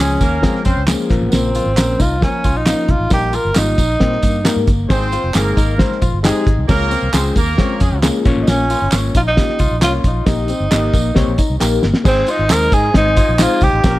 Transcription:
Already playing: C#4 G#4
0.00 C#2 F3 G#3 C#4 G#4
0.20 D#2 A#3 A#4, kick, closed hi-hat, tambourine
0.42 F3 G#3 C4 C#4 G#4, kick, snare, closed hi-hat, tambourine
0.55 snare
0.65 F2 C4 C#4 C5, kick, closed hi-hat, tambourine
0.77 C#2
0.86 F3 G#3 A#3 C#4 G#4, snare, clap, closed hi-hat, tambourine
1.09 A#1 F3 A#3 C4 A#4, kick, closed hi-hat, tambourine
1.16 C#3
1.21 A1
1.27 B3
1.32 A#1 A#3 C4, snare, closed hi-hat, tambourine
1.55 F4, closed hi-hat, tambourine
1.66 G#1
1.76 A#1 F3 A#3 C#4 A#4, snare, clap, closed hi-hat, tambourine
2.00 C2 D#4 F4, kick, closed hi-hat, tambourine
2.21 F3 A#3 C#4 A#4, kick, snare, closed hi-hat, tambourine
2.44 C#2 F4, kick, closed hi-hat, tambourine
2.55 A#1 D#4
2.65 F3 A#3 C#4 D#4 F4, snare, clap, closed hi-hat, tambourine
2.88 C2 F4, kick, closed hi-hat
3.00 A1
3.10 A#1 G3 A#3 D#4 G4 A#4, kick, snare, closed hi-hat, tambourine
3.33 F4 A#4, closed hi-hat, tambourine
3.45 G1
3.55 G#1 G3 A#3 D#4 F4, snare, clap, closed hi-hat, tambourine
3.78 A#1 D#4, kick, closed hi-hat, tambourine
4.00 A#2 G3 A#3 C4 D#4 A#4, kick, snare, closed hi-hat
4.12 snare
4.22 G2 A#3, kick, closed hi-hat, tambourine
4.44 G3 A#3 D#4 A#4, snare, clap, closed hi-hat, tambourine
4.56 G#2
4.67 G1, kick, closed hi-hat, tambourine
4.89 G#1 G#3 C4 D#4 G#4 C5, kick, snare, closed hi-hat, tambourine
5.12 F4, closed hi-hat, tambourine
5.24 F1
5.33 G1 G#3 A#3 C4 D#4 G#4 A#4, snare, clap, closed hi-hat, tambourine
5.57 G#1 D#4, kick, closed hi-hat, tambourine
5.78 G#3 C4 D#4 C5, kick, snare, closed hi-hat, tambourine
5.91 snare
6.02 A#1 F4, kick, closed hi-hat, tambourine
6.13 G1
6.23 G#3 C4 D#4 G4 G#4, snare, clap, closed hi-hat, tambourine
6.47 G#1, kick, closed hi-hat
6.58 C2
6.68 C#2 G#3 A#3 C#4 F4 A#4 C#5, kick, snare, closed hi-hat, tambourine
6.91 C4, closed hi-hat, tambourine
7.02 C2
7.13 C#2 G#3 C4 C#4 F4 G#4 C5, snare, clap, closed hi-hat, tambourine
7.36 D#2 A#3 A#4, kick, closed hi-hat, tambourine
7.58 G#3 C4 C#4 F4 C#5, kick, snare, closed hi-hat, tambourine
7.80 F2 G#3 C#4 G#4, kick, closed hi-hat, tambourine
7.92 C#2
8.02 G#3 A#3 C#4 F4 G#4, snare, clap, closed hi-hat, tambourine
8.25 A#1 A#3 C#4 F4 C#5, kick, closed hi-hat, tambourine
8.36 A1
8.42 D#4
8.47 A#1 A#3 C#4, snare, closed hi-hat, tambourine
8.70 F4, closed hi-hat, tambourine
8.82 G1
8.92 G#1 A#3 C#4 F4 C#5, snare, clap, closed hi-hat, tambourine
9.15 A#1 D#4 F4, kick, closed hi-hat, tambourine
9.27 D#4
9.37 A#3 C#4 F4 G4, kick, snare, closed hi-hat, tambourine
9.49 snare
9.59 C2 F4, kick, closed hi-hat, tambourine
9.71 A#1
9.80 C2 A#3 C#4 F4 C#5, snare, clap, closed hi-hat, tambourine
10.04 A#1 D#4, kick, closed hi-hat, tambourine
10.26 A#1 A#3 D#4 G4 D#5, kick, snare, closed hi-hat, tambourine
10.48 C4, closed hi-hat, tambourine
10.60 G1
10.71 G#1 A#3 D#4 G4 D#5, snare, clap, closed hi-hat, tambourine
10.93 A#1 A#3, kick, closed hi-hat, tambourine
11.14 C2 A#3 C4 D#4 G4 C#5, kick, snare, closed hi-hat, tambourine
11.28 A#1
11.38 D#4, kick, closed hi-hat, tambourine
11.50 C2
11.60 A#1 A#3 D#4 G4 A#4, snare, clap, tambourine
11.83 G1, snare, tambourine
11.94 snare
12.04 G#1 G#3 C4 D#4 G#4 C5 D#5 G#5, kick, snare, crash, tambourine
12.27 D#4 F4, closed hi-hat, tambourine
12.39 G#1
12.49 D#2 G#3 C4 D#4 A#4 C5, snare, clap, closed hi-hat, tambourine
12.72 G#2 D#4 G#4, kick, closed hi-hat, tambourine
12.94 G#1 G#3 C4 D#4 C5, kick, snare, closed hi-hat, tambourine
13.06 snare
13.17 F4, kick, closed hi-hat, tambourine
13.29 A#1
13.39 G#3 C4 D#4 F4 C5, snare, clap, closed hi-hat, tambourine
13.61 C2 G4, kick, closed hi-hat, tambourine
13.73 A1
13.83 F3 A#3 C#4 A#4 C#5 F5 A#5, kick, snare, closed hi-hat, tambourine

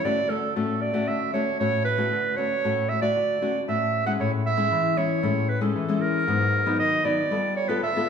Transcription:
0.04 D3 A3 C#4 F#4 D5
0.29 A3 C#4 F#4 A4
0.56 A2 A3 C#4 F#4 A4
0.81 D5
0.94 A3 C#4 F#4
1.07 D3 E5
1.33 A3 C#4 F#4 C#5
1.60 A2 A3 C#4 F#4 C#5
1.85 B4
1.98 A3 C#4 F#4
2.12 D3
2.37 A3 C#4 F#4 C#5
2.64 A2 A3 C#4 F#4
2.89 E5
3.01 A3 F#4 D5
3.16 D3
3.42 A3 C#4 F#4
3.68 A2 A3 C#4 F#4 E5
4.06 G#3 C#4 E4 F#5
4.20 A2 C#5
4.46 E5
4.57 G#3 C#4 E4
4.71 E3
4.97 G#3 C#4 E4 C#5
5.23 A2 G#3 C#4 E4
5.49 B4
5.61 G#3 C#4 E4 A4
5.75 E3
5.89 G#3 C#4 E4
6.02 A#4
6.27 G#2 F#3 B3 D#4
6.66 F#3 B3 D#4
6.79 D#3 D#5
7.05 F#3 B3 D#4 D5
7.31 G3 B3 F4 A4
7.56 C#5
7.68 B3 F4 A4 B4
7.83 D3 E5
7.96 B3 F4 A4

